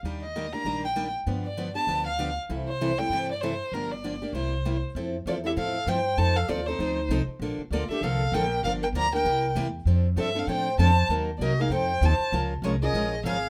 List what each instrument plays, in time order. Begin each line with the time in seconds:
0.03 upright bass D#2, steel-string acoustic guitar D#3 G3 A#3 D4 G4
0.22 violin D#5
0.36 steel-string acoustic guitar D#3 G3 A#3 D4 G4
0.53 steel-string acoustic guitar A#3 D4 G4, violin A#5
0.65 upright bass A#1, steel-string acoustic guitar D#3 G3 A#3 D4 G4
0.84 violin G5
0.96 steel-string acoustic guitar D#3 G3 A#3 D4 G4
1.26 upright bass G2, steel-string acoustic guitar D3 F3 B3 D4 G4
1.45 violin D5
1.57 steel-string acoustic guitar D3 F3 B3 D4 G4
1.75 steel-string acoustic guitar B3 D4 G4, violin A5
1.87 upright bass D2, steel-string acoustic guitar D3 F3 B3 D4 G4
2.07 violin F5
2.19 steel-string acoustic guitar D3 F3 B3 D4 G4
2.49 upright bass C2, steel-string acoustic guitar C3 E3 G3 C4 E4 A4
2.68 violin C5
2.81 steel-string acoustic guitar C3 E3 G3 C4 E4 A4
2.99 steel-string acoustic guitar G3 C4 E4 A4, violin G5
3.09 upright bass G2, steel-string acoustic guitar C3 E3 G3 C4 E4 A4
3.31 violin D5
3.41 steel-string acoustic guitar C3 E3 G3 C4 E4 A4, violin C5
3.72 upright bass G1, steel-string acoustic guitar D3 F3 A#3 D4 G4, violin A#4
3.91 violin D5
4.04 steel-string acoustic guitar D3 F3 A#3 D4 G4
4.22 steel-string acoustic guitar A#3 D4 G4
4.33 upright bass C2, steel-string acoustic guitar C3 G3 A#3 E4 G4, violin C5
4.65 steel-string acoustic guitar C3 G3 A#3 E4 G4
4.95 upright bass F2, steel-string acoustic guitar F3 C4 E4 A4
5.26 upright bass E2, steel-string acoustic guitar F3 C4 E4 A4, bansuri F4, violin D5
5.44 steel-string acoustic guitar C4 E4 A4, bansuri G4, violin E5
5.57 upright bass A2, steel-string acoustic guitar F3 C4 E4 A4, bansuri A4, violin F5
5.87 upright bass G2, steel-string acoustic guitar F3 C4 E4 A4, bansuri C5, violin G5
6.17 upright bass F2, steel-string acoustic guitar F3 C4 D#4 A4, bansuri C5, violin A5
6.36 bansuri A4, violin F5
6.48 upright bass D#2, steel-string acoustic guitar F3 C4 D#4 A4, bansuri F4, violin D5
6.66 steel-string acoustic guitar C4 D#4 A4, bansuri D#4, violin C5
6.79 upright bass D2, steel-string acoustic guitar F3 C4 D#4 A4
7.09 upright bass C2, steel-string acoustic guitar F3 C4 D#4 A4
7.27 muted upright bass stroke
7.39 upright bass A#1, steel-string acoustic guitar D3 F3 A#3 D4 A4
7.58 muted upright bass stroke
7.71 upright bass D2, steel-string acoustic guitar D3 F3 A#3 D4 A4, bansuri F4, violin D5
7.89 steel-string acoustic guitar A#3 D4 A4, bansuri G4, violin E5, muted upright bass stroke
8.01 upright bass C2, steel-string acoustic guitar D3 F3 A#3 D4 A4, bansuri A4, violin F5
8.32 upright bass A#1, steel-string acoustic guitar D3 F3 A#3 D4 A4, bansuri A#4, violin G5
8.63 upright bass G1, steel-string acoustic guitar D3 F3 A#3 D4 G4, bansuri A#4, violin F5
8.82 bansuri A#4, violin G5
8.93 upright bass D2, steel-string acoustic guitar D3 F3 A#3 D4 G4, bansuri D5, violin A#5
9.13 steel-string acoustic guitar A#3 D4 G4, bansuri A#4, violin G5
9.24 upright bass C2, steel-string acoustic guitar C3 G3 A#3 E4 G4
9.55 upright bass E2, steel-string acoustic guitar C3 G3 A#3 E4 G4
9.85 upright bass F2, steel-string acoustic guitar F3 C4 D4 A4
10.16 upright bass G2, steel-string acoustic guitar F3 C4 D4 A4, bansuri A4, violin E5
10.35 steel-string acoustic guitar C4 D4 A4, bansuri A4, violin F5
10.47 upright bass A2, steel-string acoustic guitar F3 C4 D4 A4, bansuri C#5, violin G5
10.53 bansuri C5
10.78 upright bass F2, steel-string acoustic guitar F3 C4 D4 A4, bansuri C5, violin A5
11.09 upright bass D#2, steel-string acoustic guitar C3 F#3 A#3 D#4 A#4
11.37 upright bass C2, steel-string acoustic guitar C3 F#3, bansuri F4 F#4, violin D5
11.42 steel-string acoustic guitar A#3 D#4 A#4, violin D#5
11.60 steel-string acoustic guitar A#3 D#4 A#4, bansuri G#4, violin F5
11.70 upright bass F2, steel-string acoustic guitar F3 C4 D#4 A4, bansuri C5, violin G5
12.01 upright bass D#2, steel-string acoustic guitar F3 C4 D#4 A4, bansuri C5, violin A5
12.19 muted upright bass stroke
12.32 upright bass C#2, steel-string acoustic guitar F3 G#3 C#4 F4 A#4
12.62 upright bass C2, steel-string acoustic guitar F3 G#3 C#4 F4 A#4, bansuri F4, violin C#5
12.82 steel-string acoustic guitar C#4 F4 A#4, bansuri G#4, violin D#5
12.93 upright bass A#1, steel-string acoustic guitar F3 G#3 C#4 F4 A#4
13.24 upright bass G#1, steel-string acoustic guitar F3 G#3 C#4 F4 A#4, bansuri A4, violin F5
13.28 bansuri G#4